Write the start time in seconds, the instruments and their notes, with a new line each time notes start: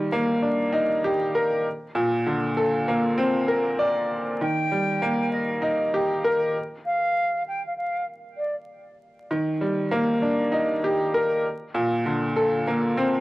Already playing: upright piano D#3 G3
0.12 upright piano A#3
0.42 upright piano D4
0.72 upright piano D#4
1.04 upright piano G4
1.35 upright piano A#4
1.95 upright piano A#2
2.26 upright piano D3
2.57 upright piano A4
2.88 upright piano A#3
3.18 upright piano C4
3.48 upright piano A#4
3.79 upright piano D5
4.41 upright piano D#3, flute G5
4.71 upright piano G3
5.02 upright piano A#3
5.31 flute D#5
5.62 upright piano D#4
5.94 upright piano G4
6.25 upright piano A#4
6.85 flute F5
7.48 flute G5
7.66 flute F5
7.76 flute F5
8.37 flute D5
9.31 upright piano D#3
9.61 upright piano G3
9.91 upright piano A#3
10.22 upright piano D4
10.52 upright piano D#4
10.84 upright piano G4
11.14 upright piano A#4
11.74 upright piano A#2
12.06 upright piano D3
12.36 upright piano A4
12.67 upright piano A#3
12.97 upright piano C4